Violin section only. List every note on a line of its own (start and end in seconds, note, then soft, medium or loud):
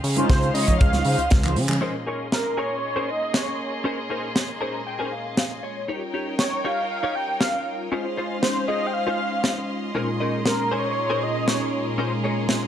0.00 1.79 C#4 medium
0.00 1.80 D#5 medium
0.00 1.79 F5 medium
0.00 1.80 C6 medium
1.82 5.85 A#3 medium
1.82 5.85 C#4 medium
1.82 5.85 G#4 medium
1.82 5.85 D#5 medium
1.82 5.85 C6 medium
5.88 7.90 D#4 medium
5.88 7.90 A#4 medium
5.88 7.90 C#5 medium
5.88 7.90 G5 medium
7.92 9.93 C#4 medium
7.92 12.67 D#5 medium
7.92 9.93 F5 medium
7.92 12.67 C6 medium
9.95 12.67 A#3 medium
9.95 12.67 C#4 medium
9.95 12.67 G#4 medium